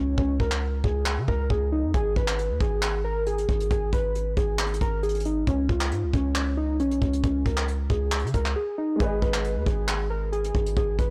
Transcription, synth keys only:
0.00 0.15 C#4 medium
0.18 0.37 C#4 medium
0.40 0.81 A#4 medium
0.84 1.26 G#4 medium
1.28 1.48 A#4 medium
1.50 1.70 G#4 medium
1.72 1.92 D#4 medium
1.94 2.14 G#4 loud
2.17 2.58 B4 medium
2.61 3.02 G#4 medium
3.04 3.24 A#4 medium
3.27 3.68 G#4 medium
3.71 3.90 G#4 medium
3.93 4.34 B4 medium
4.37 4.78 G#4 medium
4.81 5.01 A#4 medium
5.03 5.22 G#4 medium
5.25 5.45 D#4 medium
5.47 5.67 C#4 medium
5.69 6.11 F4 medium
6.14 6.55 C#4 medium
6.57 6.77 D#4 medium
6.80 7.21 C#4 medium
7.23 7.43 C#4 medium
7.46 7.87 A#4 medium
7.90 8.31 G#4 medium
8.34 8.54 A#4 medium
8.56 8.75 G#4 medium
8.78 8.97 D#4 medium
9.00 9.19 G#4 medium
9.22 9.64 B4 medium
9.67 10.08 G#4 medium
10.10 10.30 A#4 medium
10.32 10.74 G#4 medium
10.77 10.96 G#4 medium
10.99 11.10 B4 medium

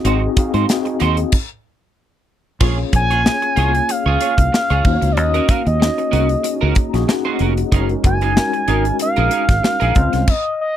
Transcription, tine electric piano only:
0.00 0.05 C4 medium
0.00 0.06 D#4 medium
0.00 0.06 F#4 medium
0.00 0.06 G#4 medium
0.00 1.36 C5 medium
0.00 0.06 D#5 medium
0.00 0.38 F5 medium
0.05 0.31 C4 loud
0.05 0.31 D#4 medium
0.05 0.31 F#4 medium
0.05 0.32 G#4 medium
0.05 0.32 D#5 loud
0.37 0.63 C4 medium
0.37 0.63 D#4 medium
0.37 0.63 F#4 medium
0.37 0.64 G#4 medium
0.37 0.64 F5 medium
0.68 1.21 C4 medium
0.68 1.21 D#4 medium
0.68 1.21 F#4 medium
0.68 1.21 G#4 medium
0.68 1.21 D#5 loud
2.60 3.12 A#3 loud
2.60 3.13 C#4 medium
2.60 3.13 F4 medium
2.60 3.13 G#4 medium
2.60 3.13 C#5 loud
3.25 3.51 A#3 medium
3.25 3.51 C#4 medium
3.25 3.51 F4 medium
3.25 3.51 G#4 medium
3.25 3.51 C#5 medium
3.56 4.58 A#3 medium
3.56 4.58 C#4 medium
3.56 4.59 F4 medium
3.56 4.59 G#4 medium
3.56 4.59 C#5 medium
4.85 5.63 A#3 medium
4.85 5.63 C#4 medium
4.85 5.63 D#4 medium
4.85 5.63 F#4 medium
4.85 4.92 C5 medium
4.93 5.66 C#5 loud
5.80 6.06 A#3 medium
5.80 6.06 C#4 medium
5.80 6.06 D#4 medium
5.80 6.07 F#4 medium
5.80 6.07 C#5 medium
6.12 6.76 A#3 medium
6.12 6.76 C#4 medium
6.12 6.76 D#4 medium
6.12 6.76 F#4 medium
6.12 6.76 G#4 medium
6.77 7.07 A#5 medium
6.93 7.57 A#3 medium
6.93 7.57 C#4 medium
6.93 7.57 D#4 medium
6.93 7.57 F#4 medium
6.93 7.57 G#4 loud
7.09 7.25 F#5 medium
7.26 7.69 D#5 medium
7.72 8.24 G#3 loud
7.72 8.24 C#4 medium
7.72 8.24 D#4 medium
7.72 8.24 F#4 medium
7.72 8.24 A#4 loud
8.36 8.62 G#3 medium
8.36 8.62 C#4 medium
8.36 8.62 D#4 medium
8.36 8.62 F#4 medium
8.36 8.63 A#4 medium
8.67 9.69 G#3 medium
8.67 9.69 C#4 medium
8.67 9.70 D#4 medium
8.67 9.70 F#4 medium
8.67 9.70 A#4 medium
9.96 10.22 G#3 medium
9.96 10.22 C4 medium
9.96 10.22 C#4 medium
9.96 10.22 F4 medium
9.96 10.22 C5 loud

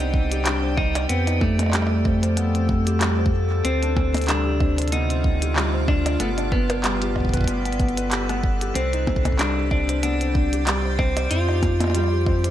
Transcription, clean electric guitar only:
0.00 0.48 D#4 loud
0.48 0.76 D4 loud
0.77 1.09 D#4 loud
1.09 1.42 B3 loud
1.41 3.29 A3 medium
3.65 4.28 C4 loud
4.29 4.92 D4 loud
4.92 5.88 D#4 loud
5.88 6.21 D4 loud
6.20 6.29 A3 medium
6.52 8.40 B3 medium
8.75 9.39 C4 loud
9.39 9.70 D4 loud
9.71 10.02 D4 loud
10.03 10.63 D4 medium
10.99 11.28 C4 medium
11.31 12.51 F4 loud

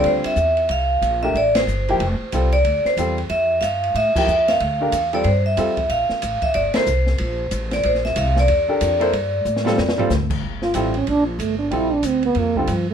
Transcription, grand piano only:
0.00 0.34 D3 medium
0.00 0.34 G3 medium
0.00 0.35 C4 medium
0.00 0.35 F4 medium
0.00 0.35 A4 medium
1.22 1.34 A3 medium
1.22 1.34 D4 medium
1.22 1.35 G4 medium
1.22 1.35 A#4 medium
1.89 1.99 F3 medium
1.89 1.99 A#3 medium
1.89 2.00 E4 medium
1.89 2.00 G4 medium
2.33 2.51 G3 medium
2.33 2.52 C4 medium
2.33 2.51 F4 medium
2.33 2.52 A4 medium
2.98 3.16 G3 medium
2.98 3.16 C4 medium
2.98 3.17 F4 soft
2.98 3.17 A4 medium
4.15 4.26 F3 medium
4.15 4.27 A#3 medium
4.15 4.27 E4 medium
4.15 4.28 G4 medium
4.80 4.91 A3 medium
4.80 4.92 D4 medium
4.80 4.92 G4 soft
4.80 4.92 A#4 medium
5.13 5.24 G3 medium
5.13 5.24 C4 medium
5.13 5.24 F4 medium
5.13 5.24 A4 medium
5.57 5.75 G3 medium
5.57 5.76 C4 medium
5.57 5.76 F4 medium
5.57 5.76 A4 medium
6.75 6.86 A#3 medium
6.75 6.86 E4 medium
6.75 6.86 A4 medium
6.75 6.86 C5 medium
8.69 8.99 D4 medium
8.69 8.99 G4 medium
8.69 8.99 A4 medium
8.69 9.00 A#4 medium
9.00 9.11 A#3 medium
9.00 9.12 E4 medium
9.00 9.12 A4 medium
9.00 9.12 C5 medium
9.65 9.76 G3 medium
9.65 9.76 C4 medium
9.65 9.77 F4 medium
9.65 9.77 A4 loud
9.98 10.09 G3 medium
9.98 10.09 C4 medium
9.98 10.10 F4 medium
9.98 10.10 A4 medium
10.75 10.93 G3 medium
10.75 10.93 C4 medium
10.75 10.93 F4 medium
10.75 10.93 A4 medium
11.71 11.89 G3 medium
11.71 11.89 C4 medium
11.71 11.90 F4 soft
11.71 11.90 A4 medium
12.57 12.67 G3 medium
12.57 12.68 C4 medium
12.57 12.68 F4 medium
12.57 12.69 A4 medium

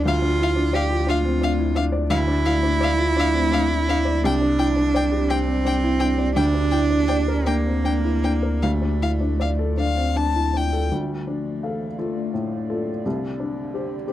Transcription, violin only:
0.08 0.16 F5 medium
0.43 0.51 F5 medium
0.75 0.83 F5 medium
1.10 1.18 F5 medium
1.43 1.51 F5 medium
1.76 1.84 F5 medium
2.10 2.18 F5 medium
2.46 2.54 F5 medium
2.83 2.91 F5 medium
3.19 3.27 F5 medium
3.53 3.61 F5 medium
3.89 3.97 F5 medium
4.25 4.33 G5 medium
4.59 4.67 G5 medium
4.96 5.04 G5 medium
5.30 5.38 G5 medium
5.66 5.74 G5 medium
6.00 6.08 G5 medium
6.36 6.44 G5 medium
6.71 6.79 G5 medium
7.08 7.16 G5 medium
7.46 7.54 G5 medium
7.85 7.93 G5 medium
8.24 8.32 G5 soft
8.63 8.71 F5 medium
9.02 9.10 F5 soft
9.41 9.49 F5 soft
9.80 10.18 F5 medium
10.17 10.58 A5 medium
10.56 10.93 G5 medium

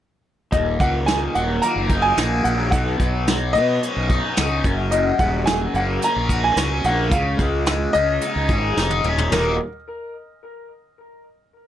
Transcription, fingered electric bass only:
0.53 0.76 D#1 medium
0.80 1.27 C#2 medium
1.35 1.59 D#1 medium
1.76 2.11 F#1 medium
2.17 2.41 A#1 medium
2.45 2.72 A#1 medium
2.72 2.96 B1 medium
3.00 3.56 B1 medium
3.55 3.78 B2 medium
3.96 4.20 B1 medium
4.38 4.61 C#2 medium
4.64 5.11 F#1 medium
5.19 5.66 D#1 medium
5.74 5.97 F#1 medium
6.16 6.51 A#1 medium
6.56 6.80 C#2 medium
6.84 7.12 A#1 medium
7.12 7.35 C#2 loud
7.40 7.86 C#2 medium
7.95 8.18 C#2 medium
8.36 8.47 C#2 medium
8.49 8.74 G#1 medium
8.77 9.01 F1 medium
9.05 9.29 D#1 medium
9.33 9.58 D#1 medium

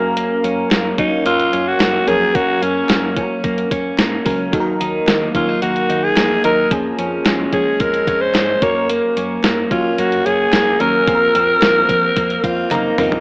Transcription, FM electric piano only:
0.00 0.88 F#3 medium
0.00 0.89 A#3 medium
0.00 0.89 C#4 medium
0.00 0.89 A#4 loud
0.00 0.15 F5 medium
2.07 2.32 F#3 medium
2.07 2.32 A#3 medium
2.07 2.33 C#4 medium
2.07 2.33 A#4 medium
2.34 3.34 F#3 medium
2.34 3.34 A#3 medium
2.34 3.34 C#4 medium
2.34 3.34 A#4 medium
4.25 4.50 F#3 medium
4.25 4.50 A#3 medium
4.25 4.51 C#4 medium
4.25 4.51 A#4 medium
4.53 5.52 F#3 medium
4.53 5.52 A#3 medium
4.53 5.53 D#4 medium
4.53 4.60 A4 medium
4.60 5.56 A#4 loud
6.44 6.69 F#3 medium
6.44 6.69 A#3 medium
6.44 6.69 D#4 medium
6.44 6.69 A#4 medium
6.71 7.70 F3 medium
6.71 7.71 A#3 medium
6.71 7.71 C#4 medium
6.71 7.71 G#4 medium
8.62 9.61 F#3 medium
8.62 9.61 A#3 medium
8.62 9.62 C#4 medium
8.62 9.62 A#4 medium
10.80 11.05 F#3 medium
10.80 11.05 A#3 medium
10.80 11.05 C#4 medium
10.80 11.05 A#4 medium
11.07 12.07 F3 medium
11.07 12.07 A#3 medium
11.07 12.07 C4 medium
11.07 11.14 G#4 medium
11.15 12.11 A#4 medium
12.44 12.69 F5 medium
12.71 12.97 A#5 medium
12.98 13.20 F3 medium
12.98 13.20 A#3 medium
12.98 13.20 C4 medium
12.98 13.20 A#4 medium
12.98 13.20 A#5 medium

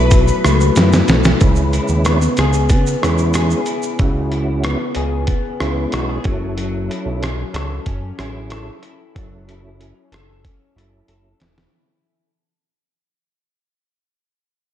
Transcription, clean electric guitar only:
0.00 1.41 B2 medium
0.00 0.11 F#3 medium
0.00 0.44 A3 medium
0.00 0.77 E4 medium
0.12 1.48 F#3 medium
0.45 1.08 A3 medium
0.77 1.74 E4 medium
1.09 1.48 A3 medium
1.42 3.98 C#3 medium
1.74 3.02 E4 medium
2.06 2.70 B3 medium
2.39 3.33 G#4 medium
2.71 4.63 B3 medium
3.03 3.67 E4 medium
3.35 4.95 G#4 medium
3.67 4.31 E4 medium
4.00 6.32 C#3 medium
4.32 5.60 E4 medium
4.64 5.27 B3 medium
4.96 5.93 G#4 medium
5.28 6.31 B3 medium
5.61 6.60 E4 medium
5.93 6.09 F#4 medium
6.09 6.31 G#4 medium
6.25 6.57 F#3 medium
6.57 9.15 F#3 medium
6.90 8.19 E4 medium
7.23 7.86 C#4 medium
7.54 8.51 A4 medium
7.86 9.80 C#4 medium
8.19 8.83 E4 medium
8.51 10.12 A4 medium
8.83 9.48 E4 medium
9.15 12.30 F#3 medium
9.48 10.76 E4 medium
9.80 10.44 C#4 soft
10.12 11.08 A4 medium
10.44 12.30 C#4 medium
10.76 11.41 E4 medium
11.08 12.30 A4 medium
11.41 12.30 E4 medium

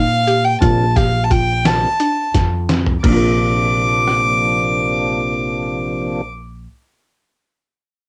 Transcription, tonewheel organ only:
0.60 0.85 C3 medium
0.60 0.85 F3 medium
0.60 0.86 A#3 medium
0.60 0.86 D4 medium
1.64 1.89 C3 medium
1.64 1.89 F3 medium
1.64 1.89 A#3 medium
1.64 1.90 D4 medium
3.03 6.22 C3 medium
3.03 6.22 F3 medium
3.03 6.22 A#3 medium
3.03 6.22 D4 medium

